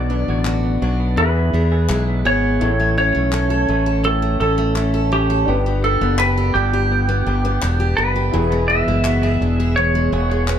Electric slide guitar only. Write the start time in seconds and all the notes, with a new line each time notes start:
Already playing: D5
1.18 B4
2.27 C#5
2.98 C#5
4.05 A4
4.40 A4
5.13 G4
5.84 A4
6.19 B4
6.54 G4
7.97 B4
8.68 E5
9.76 C#5